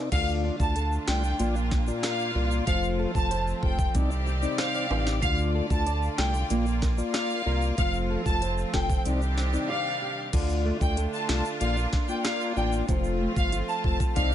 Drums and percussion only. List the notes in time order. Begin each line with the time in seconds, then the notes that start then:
0.12 kick, closed hi-hat, crash, shaker
0.28 shaker
0.60 kick, shaker
0.76 closed hi-hat, shaker
0.92 shaker
1.08 cross-stick, snare
1.24 shaker
1.39 closed hi-hat, shaker
1.56 shaker
1.71 kick, snare, shaker
1.87 shaker
2.03 cross-stick, snare, closed hi-hat, shaker
2.19 shaker
2.51 shaker
2.67 kick, closed hi-hat, shaker
2.83 shaker
3.15 kick, shaker
3.31 closed hi-hat, shaker
3.47 shaker
3.63 kick
3.79 kick, shaker
3.95 kick, closed hi-hat, shaker
4.11 shaker
4.27 shaker
4.43 shaker
4.58 cross-stick, snare, closed hi-hat, shaker
4.75 shaker
4.91 high timbale
5.07 snare, shaker
5.22 kick, closed hi-hat, shaker
5.38 shaker
5.70 kick, shaker
5.87 closed hi-hat, shaker
6.02 shaker
6.18 cross-stick, snare
6.34 shaker
6.50 closed hi-hat, shaker
6.66 shaker
6.82 kick, snare, shaker
6.98 shaker
7.14 cross-stick, snare, closed hi-hat, shaker
7.30 shaker
7.62 shaker
7.78 kick, closed hi-hat, shaker
7.93 shaker
8.26 kick, shaker
8.42 closed hi-hat, shaker
8.58 shaker
8.74 kick, cross-stick, snare
8.90 kick, shaker
9.05 closed hi-hat, shaker
9.22 shaker
9.37 snare, shaker
9.54 shaker
10.33 kick, closed hi-hat, crash, shaker
10.49 shaker
10.81 kick, shaker
10.97 closed hi-hat, shaker
11.13 shaker
11.29 cross-stick, snare
11.45 shaker
11.61 closed hi-hat, shaker
11.77 shaker
11.93 kick, snare
12.09 shaker
12.25 cross-stick, snare, closed hi-hat, shaker
12.40 shaker
12.57 shaker
12.72 shaker
12.88 kick, closed hi-hat, shaker
13.04 shaker
13.36 kick, shaker
13.52 closed hi-hat, shaker
13.68 shaker
13.84 kick
14.00 kick, shaker
14.16 kick, closed hi-hat, shaker